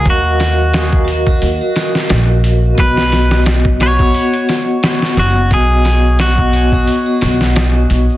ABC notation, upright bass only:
X:1
M:4/4
L:1/8
Q:"Swing 16ths" 1/4=88
K:Cblyd
V:1 name="Upright bass" clef=bass
E,,4 E,, z B,,,2 | =B,,,4 z3 ^F,,, | =B,,,4 z B,,,2 B,,, |]